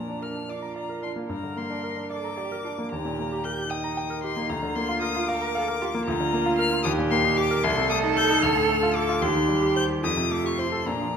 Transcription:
Already playing: grand piano A#2 F3 A#3, cello D4, violin A#5
0.08 grand piano D4
0.22 grand piano A#4, violin F6
0.36 grand piano D4
0.49 cello F4, grand piano D5, violin D6
0.62 grand piano A#5
0.76 grand piano D5, violin A#5
0.89 grand piano A#4
1.02 grand piano D4, violin C6
1.16 grand piano A#3
1.29 grand piano G2, cello A#4, violin A#5
1.43 grand piano D3
1.57 grand piano A#3, violin C6
1.70 grand piano D4
1.84 grand piano A#4
1.97 grand piano D4
2.10 cello A4, grand piano D5, violin D6
2.24 grand piano A#5
2.38 cello G4, grand piano D5
2.52 grand piano A#4
2.64 grand piano D4, cello F4
2.78 grand piano A#3
2.91 grand piano D#2, cello G4, violin A#5
3.05 grand piano A#2
3.19 grand piano A#3
3.32 grand piano G4
3.44 grand piano A#4, violin G6
3.58 grand piano G4
3.70 cello D#4, grand piano G5, violin D#6
3.84 grand piano A#5
3.97 grand piano G5
4.10 grand piano A#4
4.23 grand piano G4, violin C6
4.36 grand piano A#3
4.49 grand piano D2, cello F4, violin A#5
4.63 grand piano D3
4.76 grand piano A#3, violin C6
4.89 grand piano F4
5.02 grand piano A#4, violin D#6
5.16 grand piano F4
5.28 cello A#4, grand piano F5, violin D6
5.42 grand piano A#5
5.55 cello A4, grand piano F5
5.68 grand piano A#4
5.81 grand piano F4, cello G4
5.94 grand piano A#3
6.06 grand piano D2, cello F4, violin A#5
6.20 grand piano D3
6.33 grand piano A#3
6.46 grand piano F4
6.58 grand piano A#4, violin F6
6.72 grand piano F4
6.84 grand piano D#2, cello G4, violin D#6
6.98 grand piano A#2
7.10 grand piano A#3, violin C6
7.24 grand piano D#4
7.37 grand piano G4, violin D6
7.51 grand piano A#4
7.63 grand piano C2, cello A4, violin C6
7.77 grand piano C3
7.90 grand piano A3, violin D#6
8.03 grand piano D#4
8.16 grand piano A4, violin G6
8.30 grand piano D#4
8.43 grand piano D2, violin F6
8.56 grand piano A2
8.69 grand piano A3
8.83 grand piano F4
8.95 grand piano A4, violin D6
9.09 grand piano F4
9.22 grand piano D#2, cello G4, violin C6
9.35 grand piano D#3
9.49 grand piano G3
9.62 grand piano G4
9.76 grand piano C5, violin G6
9.89 grand piano G4
10.02 grand piano F2, cello F4, violin D#6
10.17 grand piano C3
10.31 grand piano A3, violin D6
10.44 grand piano G4, violin C#6
10.58 grand piano C5, violin C6
10.72 grand piano A4
10.87 grand piano A#2, cello D4, violin A#5
11.01 grand piano F3

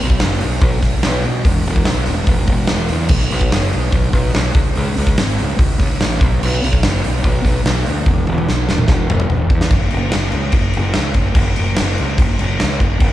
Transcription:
0.00 fingered electric bass B1, open hi-hat
0.10 kick
0.20 fingered electric bass F#1, snare, open hi-hat
0.41 fingered electric bass B1, open hi-hat
0.61 fingered electric bass B1, kick, open hi-hat
0.83 fingered electric bass B1, kick, snare, open hi-hat
1.03 fingered electric bass B1, snare, open hi-hat
1.24 fingered electric bass B2, open hi-hat
1.45 fingered electric bass E1, kick, open hi-hat
1.65 fingered electric bass E1, open hi-hat
1.76 kick
1.85 fingered electric bass B1, snare, open hi-hat
2.06 fingered electric bass E1, open hi-hat
2.27 fingered electric bass E1, kick, open hi-hat
2.47 fingered electric bass E1, kick, open hi-hat
2.67 fingered electric bass E1, snare, open hi-hat
2.89 fingered electric bass E2, open hi-hat
3.09 fingered electric bass B1, kick, crash
3.20 snare
3.31 fingered electric bass B1, open hi-hat
3.41 kick
3.52 fingered electric bass F#1, snare, open hi-hat
3.73 fingered electric bass B1, open hi-hat
3.92 fingered electric bass B1, kick, open hi-hat
4.13 fingered electric bass B1, kick, open hi-hat
4.35 fingered electric bass B1, snare, open hi-hat
4.55 fingered electric bass C#2, kick, open hi-hat
4.75 fingered electric bass C#2, open hi-hat
4.97 fingered electric bass C#2, open hi-hat
5.07 kick
5.18 fingered electric bass G#1, snare, open hi-hat
5.39 fingered electric bass C#2, open hi-hat
5.59 fingered electric bass C#2, kick, open hi-hat
5.80 fingered electric bass C#2, kick, snare, open hi-hat
6.01 fingered electric bass A1, snare, open hi-hat
6.21 fingered electric bass B1, kick, open hi-hat
6.43 fingered electric bass B1, crash
6.64 fingered electric bass B1, open hi-hat
6.73 kick
6.83 fingered electric bass F#1, snare, open hi-hat
7.04 fingered electric bass B1, open hi-hat
7.24 fingered electric bass B1, kick, open hi-hat
7.45 fingered electric bass B1, kick, snare, open hi-hat
7.65 fingered electric bass B1, snare, open hi-hat
7.86 fingered electric bass D2, open hi-hat
8.06 fingered electric bass E1, kick, high tom
8.27 fingered electric bass E1, high tom
8.38 high tom
8.49 fingered electric bass B1, snare
8.69 fingered electric bass E1, snare
8.78 mid tom
8.88 fingered electric bass E1, kick, snare
9.10 fingered electric bass E1, mid tom
9.20 mid tom
9.30 fingered electric bass E1, floor tom
9.50 fingered electric bass E2, kick
9.61 snare
9.71 fingered electric bass F#1, kick, crash
9.90 fingered electric bass F#1, crash
10.12 fingered electric bass F#1, snare, crash
10.32 fingered electric bass C#2, crash
10.52 fingered electric bass F#1, kick, crash
10.73 fingered electric bass F#1, crash
10.94 fingered electric bass C#2, snare, crash
11.14 fingered electric bass F#1, kick, crash
11.35 fingered electric bass F#1, kick, crash
11.56 fingered electric bass F#1, crash
11.77 fingered electric bass F#1, snare, crash
11.98 fingered electric bass C#2, crash
12.18 fingered electric bass F#1, kick, crash
12.39 fingered electric bass F#1, crash
12.60 fingered electric bass C#2, snare, crash
12.80 fingered electric bass F#1, kick, crash
13.00 fingered electric bass F#1, kick, crash

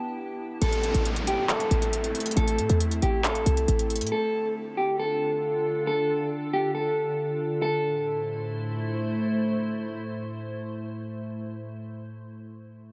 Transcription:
Already playing: ambient pad B3 E4 G4, clean electric guitar A5
0.62 808-style bass A1, ambient pad A3 C4 E4, clean electric guitar A4, closed hi-hat, downlifter
0.73 closed hi-hat
0.84 closed hi-hat
0.94 808-style bass A1, closed hi-hat
1.05 closed hi-hat
1.16 closed hi-hat
1.27 clean electric guitar G4, closed hi-hat
1.49 clean electric guitar A4, clap, closed hi-hat
1.60 closed hi-hat
1.71 808-style bass A1, closed hi-hat
1.82 closed hi-hat
1.93 closed hi-hat
2.04 closed hi-hat
2.15 closed hi-hat
2.20 closed hi-hat
2.26 closed hi-hat
2.31 closed hi-hat
2.37 808-style bass A1, clean electric guitar A4, closed hi-hat
2.48 closed hi-hat
2.59 808-style bass A2, closed hi-hat
2.69 808-style bass E2, closed hi-hat
2.80 closed hi-hat
2.91 closed hi-hat
3.02 808-style bass A1, clean electric guitar G4, closed hi-hat
3.24 clean electric guitar A4, clap, closed hi-hat
3.35 closed hi-hat
3.46 808-style bass C2, closed hi-hat
3.57 closed hi-hat
3.68 808-style bass A1, closed hi-hat
3.79 closed hi-hat
3.90 closed hi-hat
3.96 closed hi-hat
4.01 808-style bass A2, closed hi-hat
4.07 closed hi-hat
4.12 ambient pad D3 D4 F4 A4, clean electric guitar A4
4.77 clean electric guitar G4
4.99 clean electric guitar A4
5.87 clean electric guitar A4
6.53 clean electric guitar G4
6.75 clean electric guitar A4
7.62 ambient pad A2 A3 E4 C5, clean electric guitar A4

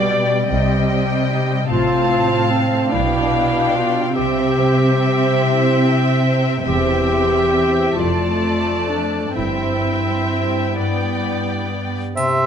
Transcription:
Already playing: cello section B2, harp B2 G3, viola section G3, violin section D5 G5, clarinet D5
0.09 harp D4 G4
0.48 double bass section C2, cello section C3, harp C3, viola section G3, violin section D#5 G5
0.89 harp C4
1.29 harp D#4 G4
1.70 double bass section A1, harp A2, cello section A2, viola section C4, clarinet F4, violin section F5 A5
2.11 harp C4
2.51 clarinet C4, harp F4 A4
2.92 double bass section B1, cello section B2, harp B2, viola section D4, clarinet E4, violin section F5 G5
3.35 harp D4
3.76 harp F4 G4, clarinet F4
4.16 double bass section C2, harp C3, cello section C3, viola section C4, clarinet G4, violin section E5 G5
4.58 harp G3
5.01 harp C4
5.42 harp E4
5.83 harp G4
6.24 harp C4
6.65 double bass section E1, cello section E2, harp E2, viola section C4, clarinet G4, violin section E5 G5
7.10 harp C4
7.55 harp E4 G4
7.95 double bass section F1, harp F2, cello section F2, viola section A3, clarinet F4, violin section D5 A5
8.44 harp A3
8.89 clarinet D4, harp D4 A4
9.35 double bass section G1, harp G2, cello section G2, viola section C4, clarinet E4, violin section E5 G5
9.84 harp C4
10.32 harp E4 G4
10.78 harp G2, viola section B3, violin section D5 G5
11.25 harp B3
11.73 harp D4 G4
12.15 bassoon C3, harp C3, clarinet G4, oboe E5, flute C6, triangle

